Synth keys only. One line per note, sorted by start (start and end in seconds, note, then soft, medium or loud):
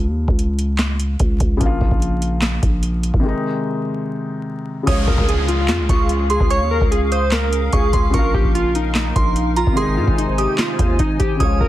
4.87 5.06 C#5 medium
5.07 5.26 A#4 medium
5.29 5.47 G#4 medium
5.48 5.67 F4 medium
5.68 6.26 F4 medium
6.30 6.49 G#4 medium
6.50 6.69 C#5 medium
6.71 6.89 A#4 medium
6.91 7.10 G#4 medium
7.12 7.30 C5 medium
7.32 7.70 A#4 medium
7.73 8.11 G#4 medium
8.14 8.32 A#4 medium
8.34 8.53 G4 medium
8.55 8.73 F4 medium
8.75 8.94 D#4 medium
8.95 9.53 D#4 medium
9.57 9.75 F4 medium
9.77 9.96 G#4 medium
9.97 10.16 F4 medium
10.18 10.36 D#4 medium
10.38 10.57 G4 medium
10.59 10.97 F4 medium
10.99 11.18 D#4 medium
11.19 11.38 G4 medium
11.40 11.59 C#5 medium
11.60 11.68 A#4 medium